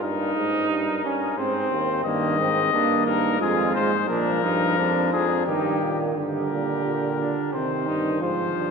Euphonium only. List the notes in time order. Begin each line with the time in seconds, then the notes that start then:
0.01 G2
0.35 G#2
0.70 G2
1.03 G2
1.37 G#2
1.71 D#2
2.05 G2
2.39 G#2
2.73 G2
3.07 G2
3.41 F2
3.75 G#2
4.09 A#2
4.44 G2
4.78 F2
5.13 F2
5.47 G2
5.82 A#2
6.17 G2
6.51 A#2
6.85 A#2
7.53 C3
7.87 G2
8.22 G#2
8.57 G2